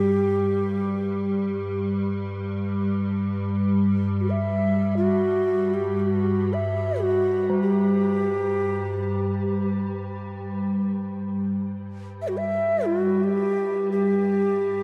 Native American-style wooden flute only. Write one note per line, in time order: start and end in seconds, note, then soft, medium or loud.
0.00 1.76 G4 medium
4.21 4.31 F#4 soft
4.30 4.95 E5 medium
4.97 5.75 F#4 medium
5.74 6.01 G4 medium
5.99 6.55 F#4 medium
6.53 7.03 E5 medium
7.01 7.61 F#4 medium
7.62 9.63 G4 medium
12.22 12.29 E5 medium
12.28 12.40 F#4 medium
12.38 12.87 E5 medium
12.86 13.25 F#4 medium
13.24 13.91 G4 medium
13.92 14.83 G4 medium